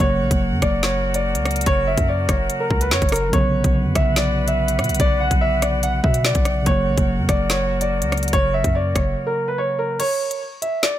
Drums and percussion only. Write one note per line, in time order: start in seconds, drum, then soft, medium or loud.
0.31 kick loud
0.31 closed hi-hat medium
0.62 kick medium
0.62 cross-stick loud
0.62 closed hi-hat medium
0.83 snare loud
0.83 closed hi-hat medium
1.14 closed hi-hat medium
1.35 closed hi-hat medium
1.46 cross-stick loud
1.46 closed hi-hat soft
1.51 closed hi-hat medium
1.56 closed hi-hat medium
1.61 closed hi-hat medium
1.66 kick loud
1.66 closed hi-hat medium
1.98 kick loud
1.98 closed hi-hat medium
2.29 kick loud
2.29 cross-stick loud
2.29 closed hi-hat medium
2.50 closed hi-hat medium
2.71 kick loud
2.81 closed hi-hat medium
2.91 snare loud
3.02 kick loud
3.02 closed hi-hat soft
3.09 cross-stick loud
3.09 closed hi-hat medium
3.09 open hi-hat medium
3.16 closed hi-hat medium
3.33 kick loud
3.33 closed hi-hat medium
3.64 kick loud
3.64 closed hi-hat medium
3.95 kick loud
3.95 cross-stick loud
3.95 closed hi-hat medium
4.16 snare loud
4.16 closed hi-hat medium
4.48 closed hi-hat medium
4.68 closed hi-hat medium
4.79 cross-stick loud
4.79 closed hi-hat soft
4.84 closed hi-hat medium
4.89 closed hi-hat medium
4.95 closed hi-hat medium
5.00 kick loud
5.00 closed hi-hat medium
5.31 kick medium
5.31 closed hi-hat medium
5.62 cross-stick loud
5.62 closed hi-hat medium
5.83 closed hi-hat medium
6.04 kick loud
6.14 closed hi-hat medium
6.25 snare loud
6.35 kick loud
6.35 closed hi-hat medium
6.45 cross-stick loud
6.45 closed hi-hat medium
6.66 kick loud
6.66 closed hi-hat medium
6.97 kick loud
6.97 closed hi-hat medium
7.29 kick loud
7.29 cross-stick medium
7.29 closed hi-hat medium
7.50 snare loud
7.50 closed hi-hat medium
7.81 closed hi-hat medium
8.02 closed hi-hat medium
8.12 cross-stick loud
8.12 closed hi-hat soft
8.17 closed hi-hat medium
8.23 closed hi-hat medium
8.28 closed hi-hat medium
8.33 kick loud
8.33 closed hi-hat medium
8.64 kick loud
8.64 closed hi-hat medium
8.96 kick loud
8.96 cross-stick medium
8.96 closed hi-hat medium
10.00 closed hi-hat medium
10.00 crash loud
10.31 closed hi-hat medium
10.62 closed hi-hat medium
10.83 snare loud
10.83 closed hi-hat medium